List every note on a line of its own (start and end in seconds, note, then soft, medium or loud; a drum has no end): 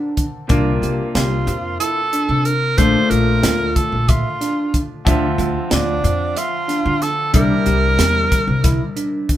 0.00 0.45 D3 medium
0.00 0.13 A#3 medium
0.00 0.46 A#3 medium
0.00 0.46 C4 medium
0.00 0.14 D4 medium
0.00 0.23 D4 medium
0.00 0.47 A4 medium
0.17 kick medium
0.17 closed hi-hat medium
0.48 0.80 C2 medium
0.48 2.73 C3 medium
0.48 2.74 A#3 medium
0.48 2.85 A#3 medium
0.48 2.74 D4 medium
0.48 0.69 D4 medium
0.48 2.75 F4 medium
0.48 kick loud
0.48 closed hi-hat medium
0.82 0.97 C2 medium
0.82 1.02 G4 medium
0.82 closed hi-hat soft
1.15 1.45 C2 medium
1.15 1.77 F4 medium
1.15 1.54 G4 medium
1.15 snare loud
1.15 closed hi-hat medium
1.47 1.77 F2 medium
1.47 closed hi-hat medium
1.80 1.99 E4 medium
1.80 2.47 A4 loud
1.80 closed hi-hat medium
2.13 2.52 D4 medium
2.13 closed hi-hat medium
2.29 2.74 C3 medium
2.45 2.79 A#4 loud
2.45 closed hi-hat medium
2.77 2.93 A#1 medium
2.77 5.02 A#2 medium
2.77 5.02 F3 medium
2.77 5.13 A3 loud
2.77 2.98 D4 medium
2.77 5.03 D4 medium
2.77 5.03 F4 medium
2.77 3.12 C5 loud
2.77 kick loud
2.77 closed hi-hat medium
3.10 3.40 A#1 medium
3.10 3.30 F4 medium
3.10 3.77 A#4 medium
3.10 closed hi-hat medium
3.43 3.73 D2 medium
3.43 3.81 F4 medium
3.43 snare loud
3.43 closed hi-hat medium
3.76 4.11 A4 medium
3.76 kick medium
3.76 closed hi-hat medium
3.92 4.22 A#1 medium
4.09 4.82 F4 medium
4.09 4.28 E5 medium
4.09 kick loud
4.09 closed hi-hat medium
4.41 4.79 D4 medium
4.41 snare soft
4.41 closed hi-hat medium
4.74 kick medium
4.74 closed hi-hat medium
5.05 5.36 D2 loud
5.05 7.29 D3 medium
5.05 7.41 F3 medium
5.05 7.30 C4 medium
5.05 5.26 D4 medium
5.05 7.31 F4 medium
5.05 7.30 E5 medium
5.05 kick loud
5.05 closed hi-hat medium
5.38 5.53 D2 medium
5.38 5.58 F4 medium
5.38 closed hi-hat medium
5.71 6.01 D2 medium
5.71 6.40 D4 medium
5.71 6.09 F4 medium
5.71 snare loud
5.71 closed hi-hat medium
6.04 6.33 F2 medium
6.04 closed hi-hat medium
6.36 7.04 F4 medium
6.36 6.56 E5 medium
6.36 snare soft
6.36 closed hi-hat medium
6.68 7.07 D4 medium
6.68 snare soft
6.68 closed hi-hat medium
6.86 7.30 D3 medium
7.02 7.34 A4 loud
7.02 snare soft
7.02 closed hi-hat medium
7.33 7.49 C2 medium
7.33 9.37 C3 medium
7.33 9.25 G3 medium
7.33 9.37 A#3 medium
7.33 7.53 D4 medium
7.33 9.37 D4 medium
7.33 9.37 E4 medium
7.33 9.25 A#4 loud
7.33 kick loud
7.33 closed hi-hat medium
7.66 7.96 C2 medium
7.66 7.85 G4 medium
7.66 closed hi-hat soft
7.99 8.28 E2 medium
7.99 8.37 G4 medium
7.99 snare loud
7.99 closed hi-hat medium
8.32 kick medium
8.32 snare soft
8.32 closed hi-hat medium
8.48 8.77 C2 medium
8.64 8.83 E4 medium
8.64 kick loud
8.64 snare soft
8.64 closed hi-hat medium
8.96 9.35 D4 medium
8.96 closed hi-hat medium
9.29 kick medium
9.29 closed hi-hat medium